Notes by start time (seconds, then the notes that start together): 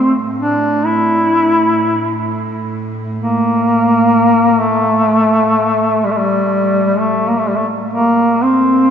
Already playing: A2 C4
0.39 D4
0.86 E4
3.18 A#3
4.60 A3
6.05 G3
6.12 A3
6.18 G3
6.99 A3
7.29 A#3
7.39 A3
7.49 G3
7.56 A3
7.94 A#3
8.43 C4